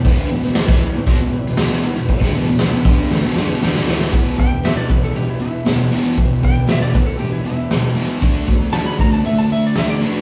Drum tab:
HH |o---o---o---o---|o---o-----------|o---o---o---o---|o---o---o---o---|
SD |---oo-------o---|----o---o-o-oooo|----o--o----o---|----o-------o---|
BD |o----o--o-------|oo----o---------|o-o---o---------|o-o---o---------|

HH |o---o---o---o---|
SD |---oo-------o---|
BD |o-o---o---------|